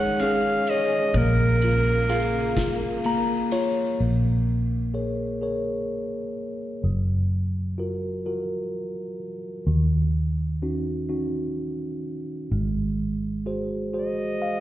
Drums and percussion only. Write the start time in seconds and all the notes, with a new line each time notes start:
0.19 ride
0.67 ride
1.14 kick, ride
1.61 ride
2.09 ride
2.57 kick, snare, ride
3.04 ride
3.52 ride